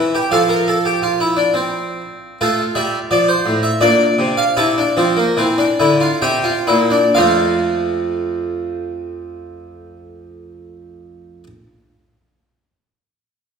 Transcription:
0.00 0.18 E3 medium
0.00 0.12 E4 medium
0.00 0.29 E5 medium
0.15 0.31 G4 medium
0.31 2.01 F3 medium
0.31 0.48 A4 medium
0.31 2.01 F5 medium
0.49 0.66 A#4 medium
0.68 0.84 A4 medium
0.85 1.01 G4 medium
1.02 1.18 F4 medium
1.20 1.36 E4 medium
1.37 1.53 D4 medium
1.54 2.38 C4 medium
2.41 2.63 A3 medium
2.41 3.79 F4 medium
2.41 2.63 A4 medium
2.75 2.97 G3 medium
2.75 2.97 E5 medium
3.11 3.33 F3 medium
3.11 3.28 D5 medium
3.28 3.51 C5 medium
3.46 3.68 A2 medium
3.63 3.81 E5 medium
3.81 4.04 A#2 medium
3.81 4.55 D4 medium
3.81 4.36 D5 medium
4.18 4.42 C3 medium
4.37 4.57 F5 medium
4.57 4.81 C3 medium
4.57 4.76 E4 medium
4.57 6.19 A5 medium
4.78 4.97 D4 medium
4.97 5.22 F3 medium
4.97 5.16 C4 medium
5.17 5.37 A#3 medium
5.37 5.63 E3 medium
5.37 5.58 C4 medium
5.58 5.79 D4 medium
5.80 6.07 D3 medium
5.80 6.01 E4 medium
6.00 6.22 F4 medium
6.22 6.51 C3 medium
6.22 6.45 G4 medium
6.22 7.13 G5 medium
6.44 6.67 F4 medium
6.67 6.98 A#2 medium
6.67 6.91 E4 medium
6.90 7.15 D4 medium
7.15 11.44 F2 medium
7.15 11.47 F3 medium
7.15 11.47 A3 medium
7.15 11.44 F4 medium
7.15 11.43 F5 medium

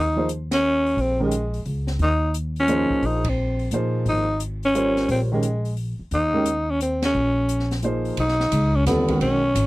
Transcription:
0.00 0.93 D#2 medium
0.00 0.27 D#4 loud
0.16 0.27 F3 medium
0.16 0.27 A#3 soft
0.16 0.27 D#4 medium
0.16 0.27 G#4 soft
0.16 0.28 C5 medium
0.29 closed hi-hat soft
0.51 1.02 C#4 loud
0.51 snare medium
0.51 ride medium
0.86 open hi-hat soft
0.97 1.61 A#1 medium
0.97 1.21 C4 medium
0.97 open hi-hat soft
1.20 1.30 D#3 medium
1.20 1.31 G#3 medium
1.20 1.64 G#3 medium
1.20 1.31 C#4 medium
1.20 1.31 G4 medium
1.20 1.31 A#4 medium
1.31 closed hi-hat medium
1.54 open hi-hat soft
1.65 1.97 C#2 medium
1.65 open hi-hat soft
1.87 snare soft
1.99 2.86 D#2 medium
1.99 2.33 D#4 loud
1.99 open hi-hat soft
2.34 closed hi-hat soft
2.56 3.08 C#4 medium
2.56 open hi-hat soft
2.68 3.20 F3 medium
2.68 3.20 A#3 medium
2.68 3.21 D#4 medium
2.68 3.21 G#4 medium
2.68 3.21 C5 medium
2.68 closed hi-hat soft
2.90 muted upright bass stroke soft
2.90 kick soft
3.02 3.67 A#1 medium
3.02 3.31 D#4 medium
3.02 open hi-hat soft
3.24 kick medium
3.24 ride medium
3.29 3.73 C4 medium
3.59 open hi-hat soft
3.71 4.03 A#2 medium
3.71 4.24 F3 medium
3.71 4.24 A#3 medium
3.71 4.25 D#4 soft
3.71 4.25 G#4 soft
3.71 4.25 C5 medium
3.71 closed hi-hat soft
4.05 5.05 G#1 medium
4.05 4.39 D#4 loud
4.05 open hi-hat soft
4.40 closed hi-hat medium
4.63 5.07 C#4 medium
4.63 open hi-hat soft
4.75 5.27 G3 medium
4.75 5.27 F4 medium
4.75 5.27 A#4 medium
4.75 5.27 C5 medium
4.75 5.28 C#5 medium
4.75 closed hi-hat soft
4.97 snare soft
4.97 open hi-hat soft
5.08 5.96 A#1 medium
5.08 5.21 C4 medium
5.08 open hi-hat soft
5.32 5.42 D#3 medium
5.32 5.42 G#3 medium
5.32 5.75 G#3 medium
5.32 5.43 C#4 medium
5.32 5.43 G4 medium
5.32 5.43 A#4 medium
5.43 closed hi-hat soft
5.65 open hi-hat soft
5.77 open hi-hat soft
5.99 muted upright bass stroke soft
6.11 7.11 D#2 medium
6.11 6.72 D#4 loud
6.11 open hi-hat soft
6.33 6.45 D#3 medium
6.33 6.45 G#3 medium
6.33 6.45 C#4 medium
6.33 6.45 G4 medium
6.33 6.45 A#4 medium
6.46 closed hi-hat medium
6.70 6.81 C#4 medium
6.80 7.02 C4 medium
6.80 closed hi-hat medium
7.02 7.81 C#4 medium
7.02 snare medium
7.02 ride medium
7.14 8.14 A#1 medium
7.49 closed hi-hat soft
7.59 snare soft
7.71 snare soft
7.71 open hi-hat soft
7.83 8.18 F3 medium
7.83 8.18 A#3 medium
7.83 8.18 D#4 medium
7.83 8.18 G#4 soft
7.83 8.18 C5 medium
7.83 closed hi-hat soft
8.05 open hi-hat soft
8.17 8.51 B1 medium
8.17 8.77 D#4 loud
8.17 ride medium
8.28 snare soft
8.40 snare soft
8.52 8.85 C#2 medium
8.52 hi-hat pedal medium
8.52 ride medium
8.76 8.86 C#4 medium
8.86 9.19 D#2 medium
8.86 9.07 D3 medium
8.86 9.07 G3 medium
8.86 9.19 B3 medium
8.86 9.07 C4 medium
8.86 9.07 F4 medium
8.86 9.08 A4 medium
8.86 snare soft
8.86 hi-hat pedal medium
8.86 ride medium
9.08 9.38 D#3 medium
9.08 9.39 G#3 medium
9.08 9.39 C#4 soft
9.08 9.39 F#4 medium
9.08 9.39 A#4 medium
9.08 kick soft
9.08 ride soft
9.21 9.54 B1 medium
9.21 9.67 C#4 medium
9.21 ride medium
9.55 9.67 G#1 medium
9.55 hi-hat pedal medium
9.55 ride medium

